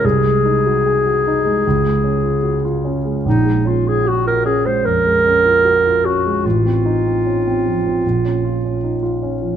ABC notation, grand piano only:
X:1
M:4/4
L:1/16
Q:1/4=75
K:Bbm
V:1 name="Grand piano"
C,, A, E G A G E A, D,, A, D F G F D A, | B,,, A, D F G F D A, F,, A, D F G F D A, | =A,,, C E C D C F, C B,,, D F D E F D F, |]